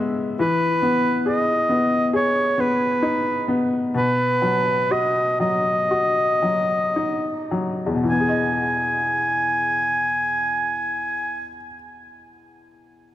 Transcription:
0.00 0.35 C#3 medium
0.00 0.41 G#3 soft
0.00 0.37 B3 soft
0.00 0.35 E4 soft
0.39 3.90 E3 soft
0.39 1.22 B4 medium
0.82 1.68 B3 soft
1.26 2.12 G#4 soft
1.26 2.09 D#5 medium
1.69 2.56 B3 soft
2.13 3.91 G#4 soft
2.13 2.62 C#5 medium
2.58 3.47 B3 soft
2.58 3.49 B4 medium
3.02 3.92 D#4 soft
3.48 3.93 B3 soft
3.94 7.93 B2 soft
3.94 4.93 B4 medium
4.42 5.38 F#3 soft
4.91 5.89 F#4 soft
4.91 5.39 D#5 medium
5.40 6.41 F#3 soft
5.40 7.47 D#5 medium
5.91 8.04 F#4 soft
6.42 7.50 F#3 soft
6.96 8.04 D#4 soft
7.51 8.06 F#3 soft
7.86 11.31 E2 soft
7.95 11.40 B2 soft
8.04 11.49 E3 soft
8.09 11.57 B3 soft
8.09 11.54 G#5 medium
8.20 11.65 G#4 soft
8.29 11.74 D#5 soft

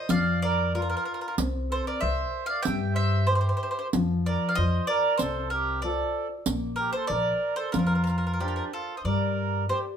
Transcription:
0.09 0.93 F2 medium
0.09 0.72 F3 medium
0.09 0.40 D5 medium
0.09 0.43 F5 medium
0.09 riq medium
0.42 0.73 A#4 medium
0.42 0.72 D5 medium
0.75 1.26 F4 soft
0.75 1.36 F4 medium
0.75 0.81 A#4 medium
0.75 1.26 A#4 soft
0.75 1.26 D5 medium
0.82 0.88 A#4 soft
0.90 0.95 A#4 medium
0.97 1.04 A#4 soft
1.05 1.12 A#4 soft
1.14 1.20 A#4 soft
1.21 1.27 A#4 soft
1.28 1.34 A#4 soft
1.38 1.80 C2 medium
1.38 2.01 C4 medium
1.38 riq medium
1.71 1.86 A4 medium
1.71 1.86 C5 medium
1.86 2.01 A#4 medium
1.86 2.02 D5 medium
2.00 2.23 C2 medium
2.00 2.54 A#4 soft
2.00 2.46 C5 medium
2.00 2.54 C5 soft
2.00 2.46 E5 medium
2.00 2.54 E5 soft
2.46 2.65 D5 medium
2.46 2.62 F5 medium
2.63 2.95 E5 medium
2.63 2.94 G5 medium
2.63 riq medium
2.67 3.49 G2 medium
2.67 3.28 G3 medium
2.94 3.25 C5 medium
2.94 3.26 E5 medium
3.26 3.87 G4 medium
3.26 3.34 C5 medium
3.30 3.81 A#4 soft
3.30 3.81 C5 soft
3.30 3.82 E5 soft
3.35 3.40 C5 medium
3.41 3.48 C5 medium
3.49 3.56 C5 soft
3.57 3.62 C5 medium
3.63 3.70 C5 soft
3.71 3.78 C5 soft
3.79 3.87 C5 soft
3.93 4.35 F2 medium
3.93 4.55 F3 medium
3.93 riq medium
4.26 4.49 A#4 medium
4.26 4.51 D5 medium
4.49 4.56 D5 medium
4.49 4.56 F5 medium
4.55 4.78 F2 medium
4.55 5.07 F4 soft
4.55 4.86 C5 medium
4.55 5.08 C5 soft
4.55 4.87 D#5 loud
4.87 5.18 A#4 medium
4.87 5.17 D5 medium
5.18 6.02 C2 medium
5.18 5.81 C3 medium
5.18 5.50 A4 medium
5.18 5.48 C5 medium
5.18 riq medium
5.50 5.81 G4 medium
5.50 5.80 A#4 medium
5.82 6.34 F4 soft
5.82 6.34 A4 soft
5.82 6.28 A4 medium
5.82 6.35 C5 soft
5.82 6.26 D5 medium
6.46 6.87 A#1 medium
6.46 7.07 A#3 medium
6.46 riq medium
6.76 6.93 G4 medium
6.76 6.91 A#4 medium
6.93 7.09 A4 medium
6.93 7.07 C5 medium
7.07 7.31 A#1 medium
7.07 7.61 A#4 soft
7.07 7.55 A#4 medium
7.07 7.61 C5 soft
7.07 7.53 D5 medium
7.07 7.61 D5 soft
7.07 riq soft
7.56 7.72 A4 medium
7.56 7.72 C5 medium
7.72 8.59 F2 medium
7.72 8.37 F3 soft
7.72 8.67 F4 medium
7.72 7.78 A#4 medium
7.72 riq medium
7.79 7.85 A#4 soft
7.87 7.94 A#4 soft
7.95 8.03 A#4 soft
8.04 8.08 A#4 soft
8.04 riq soft
8.10 8.17 A#4 soft
8.18 8.25 A#4 soft
8.27 8.32 A#4 soft
8.33 8.40 A#4 soft
8.40 8.71 D4 medium
8.40 8.70 G4 medium
8.40 8.92 A#4 soft
8.40 8.47 A#4 soft
8.40 8.92 C5 soft
8.40 8.92 D5 soft
8.48 8.55 A#4 medium
8.56 8.63 A#4 soft
8.73 8.96 F4 medium
8.73 8.96 A4 medium
8.95 9.02 C5 soft
8.95 9.04 D#5 soft
9.05 9.67 G2 medium
9.05 9.67 G3 medium
9.05 9.65 A#4 medium
9.05 9.65 D5 medium
9.69 9.97 G4 soft
9.69 9.85 G4 medium
9.69 9.97 A#4 soft
9.69 9.78 C5 medium
9.69 9.97 D5 soft

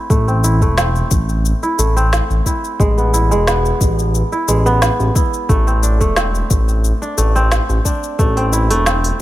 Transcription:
0.00 0.27 C4 medium
0.00 0.43 E4 medium
0.10 0.63 A1 loud
0.10 0.61 A3 medium
0.10 kick loud
0.10 shaker soft
0.28 0.77 C4 medium
0.28 shaker soft
0.44 1.62 E4 medium
0.44 shaker medium
0.62 1.02 E1 medium
0.62 1.78 A3 medium
0.62 kick medium
0.62 shaker soft
0.78 1.96 C4 medium
0.78 snare loud
0.78 shaker soft
0.95 shaker soft
1.11 1.53 A1 medium
1.11 kick loud
1.11 shaker medium
1.29 shaker soft
1.45 shaker soft
1.63 2.46 E4 medium
1.63 shaker soft
1.79 2.20 A1 loud
1.79 2.86 A3 medium
1.79 shaker medium
1.96 3.04 C4 medium
1.96 shaker soft
2.13 snare loud
2.13 shaker soft
2.30 2.40 A1 medium
2.30 shaker soft
2.46 3.13 E4 medium
2.46 kick medium
2.46 shaker medium
2.64 shaker soft
2.80 3.33 A1 loud
2.80 3.30 G#3 medium
2.80 kick loud
2.80 shaker soft
2.98 3.47 B3 medium
2.98 shaker soft
3.13 4.32 E4 medium
3.13 shaker medium
3.31 3.72 E1 medium
3.31 4.47 G#3 medium
3.31 shaker soft
3.47 4.65 B3 medium
3.47 snare loud
3.47 shaker soft
3.65 shaker soft
3.81 4.22 A1 loud
3.81 kick loud
3.81 shaker medium
3.99 shaker soft
4.15 shaker soft
4.32 5.15 E4 medium
4.32 shaker soft
4.48 4.90 A1 medium
4.48 5.54 G#3 medium
4.48 shaker medium
4.66 5.73 B3 loud
4.66 shaker soft
4.82 snare loud
4.82 shaker soft
5.00 5.10 A1 medium
5.00 shaker soft
5.15 6.72 E4 medium
5.15 kick loud
5.15 shaker medium
5.34 shaker soft
5.49 6.02 A1 loud
5.49 6.00 A3 medium
5.49 kick loud
5.49 shaker soft
5.67 6.16 C4 medium
5.67 shaker soft
5.83 7.01 D4 medium
5.83 shaker medium
6.01 6.42 E1 medium
6.01 7.17 A3 medium
6.01 kick medium
6.01 shaker soft
6.16 7.35 C4 medium
6.16 snare loud
6.16 shaker soft
6.35 shaker soft
6.50 6.92 A1 medium
6.50 kick loud
6.50 shaker medium
6.69 shaker soft
6.84 shaker soft
7.02 7.85 D4 medium
7.02 shaker soft
7.18 7.59 A1 medium
7.18 8.18 A3 medium
7.18 shaker medium
7.36 8.36 C4 medium
7.36 shaker soft
7.52 snare loud
7.52 shaker soft
7.69 7.80 A1 medium
7.69 shaker soft
7.85 9.21 D4 medium
7.85 kick medium
7.85 shaker medium
8.03 shaker soft
8.19 8.72 A1 loud
8.19 8.70 A3 medium
8.19 kick loud
8.19 shaker soft
8.37 8.86 C4 medium
8.37 open hi-hat soft
8.37 shaker soft
8.53 9.21 E4 medium
8.53 shaker medium
8.70 9.11 E1 medium
8.70 9.21 A3 medium
8.70 open hi-hat medium
8.70 shaker soft
8.86 9.21 C4 medium
8.86 snare medium
8.86 shaker soft
9.04 open hi-hat soft
9.04 shaker soft

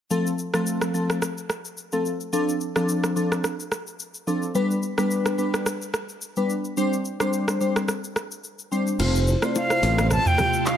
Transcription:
0.10 0.29 F3 medium
0.10 0.29 A3 medium
0.10 0.29 C4 medium
0.10 0.29 A4 loud
0.10 shaker medium
0.27 shaker medium
0.38 shaker soft
0.53 0.91 F3 medium
0.53 0.91 A3 medium
0.53 0.91 C4 medium
0.53 0.91 A4 medium
0.53 cross-stick medium
0.53 shaker medium
0.67 shaker medium
0.81 cross-stick medium
0.81 shaker medium
0.94 1.20 F3 medium
0.94 1.20 A3 medium
0.94 1.20 C4 medium
0.94 1.20 A4 medium
0.94 shaker soft
1.10 cross-stick medium
1.10 shaker soft
1.22 cross-stick medium
1.22 shaker medium
1.38 shaker soft
1.50 cross-stick medium
1.50 shaker medium
1.65 shaker soft
1.77 shaker medium
1.92 2.09 F3 medium
1.92 2.09 A3 medium
1.92 2.09 C4 medium
1.92 2.09 A4 medium
1.92 shaker soft
2.05 shaker soft
2.20 shaker soft
2.33 2.51 F3 medium
2.33 2.51 C4 medium
2.33 2.51 D4 medium
2.33 2.51 A4 loud
2.33 shaker medium
2.49 shaker medium
2.61 shaker soft
2.76 3.13 F3 medium
2.76 3.13 C4 medium
2.76 3.13 D4 medium
2.76 3.13 A4 medium
2.76 cross-stick medium
2.76 shaker medium
2.89 shaker medium
3.04 cross-stick medium
3.04 shaker medium
3.16 3.42 F3 medium
3.16 3.42 C4 medium
3.16 3.42 D4 medium
3.16 3.42 A4 medium
3.16 shaker medium
3.32 cross-stick medium
3.32 shaker soft
3.44 cross-stick medium
3.44 shaker medium
3.60 shaker medium
3.72 cross-stick medium
3.72 shaker medium
3.87 shaker soft
4.00 shaker medium
4.14 shaker soft
4.27 4.46 F3 medium
4.27 4.46 C4 medium
4.27 4.46 D4 medium
4.27 4.46 A4 medium
4.27 shaker soft
4.42 shaker soft
4.55 4.73 G3 medium
4.55 4.74 B3 medium
4.55 4.74 D4 medium
4.55 4.74 B4 loud
4.55 shaker medium
4.71 shaker medium
4.83 shaker soft
4.98 5.35 G3 medium
4.98 5.35 B3 medium
4.98 5.35 D4 medium
4.98 5.36 B4 medium
4.98 cross-stick medium
4.98 shaker medium
5.11 shaker medium
5.26 cross-stick medium
5.26 shaker medium
5.38 5.64 G3 medium
5.38 5.64 B3 medium
5.38 5.64 D4 medium
5.38 5.64 B4 medium
5.38 shaker medium
5.54 cross-stick medium
5.54 shaker soft
5.66 cross-stick medium
5.66 shaker medium
5.82 shaker medium
5.94 cross-stick medium
5.94 shaker medium
6.09 shaker soft
6.22 shaker medium
6.36 6.53 G3 medium
6.36 6.53 B3 medium
6.36 6.54 D4 medium
6.36 6.54 B4 medium
6.36 shaker soft
6.50 shaker soft
6.65 shaker soft
6.77 6.96 G3 medium
6.77 6.96 C4 medium
6.77 6.96 D4 medium
6.77 6.96 C5 loud
6.77 shaker medium
6.93 shaker medium
7.05 shaker soft
7.20 7.58 G3 medium
7.20 7.58 C4 medium
7.20 7.58 D4 medium
7.20 7.58 C5 medium
7.20 cross-stick medium
7.20 shaker medium
7.33 shaker medium
7.48 cross-stick medium
7.48 shaker medium
7.60 7.86 G3 medium
7.60 7.86 C4 medium
7.60 7.87 D4 medium
7.60 7.87 C5 medium
7.60 shaker soft
7.76 cross-stick loud
7.76 shaker soft
7.88 cross-stick medium
7.88 shaker medium
8.04 shaker medium
8.16 cross-stick medium
8.16 shaker medium
8.31 shaker medium
8.44 shaker medium
8.59 shaker soft
8.72 8.90 G3 medium
8.72 8.90 C4 medium
8.72 8.90 D4 medium
8.72 8.90 C5 medium
8.72 shaker soft
8.87 shaker soft
8.99 9.34 F1 loud
8.99 10.77 C3 medium
8.99 9.18 A3 medium
8.99 10.77 A3 medium
8.99 9.18 C4 medium
8.99 9.18 F4 medium
8.99 10.77 F4 medium
8.99 9.10 F4 medium
8.99 9.18 C5 loud
8.99 9.10 C5 medium
8.99 crash loud
8.99 low conga medium
8.99 shaker medium
9.15 shaker medium
9.27 9.38 E4 medium
9.27 9.38 C5 medium
9.27 shaker soft
9.42 9.80 A3 medium
9.42 9.80 C4 medium
9.42 9.80 F4 medium
9.42 9.52 F4 medium
9.42 9.80 C5 medium
9.42 9.51 D5 medium
9.42 cross-stick loud
9.42 shaker medium
9.55 10.08 F5 medium
9.55 high bongo medium
9.55 shaker medium
9.70 9.79 E4 medium
9.70 9.79 C5 medium
9.70 cross-stick medium
9.70 shaker medium
9.83 10.17 A1 medium
9.83 10.09 A3 medium
9.83 10.09 C4 medium
9.83 9.94 C4 medium
9.83 10.09 F4 medium
9.83 9.93 A4 medium
9.83 10.09 C5 medium
9.83 open hi-hat medium
9.83 shaker medium
9.98 cross-stick loud
9.98 low bongo medium
9.98 shaker medium
10.11 10.29 A5 loud
10.11 cross-stick medium
10.11 low conga medium
10.11 shaker medium
10.25 10.67 G5 loud
10.25 mid tom medium
10.25 shaker medium
10.38 10.49 B3 medium
10.38 10.49 G4 medium
10.38 cross-stick medium
10.38 low bongo medium
10.38 low conga medium
10.38 shaker medium
10.53 shaker medium
10.66 10.77 F5 medium
10.66 clap medium
10.66 high bongo medium
10.66 shaker medium

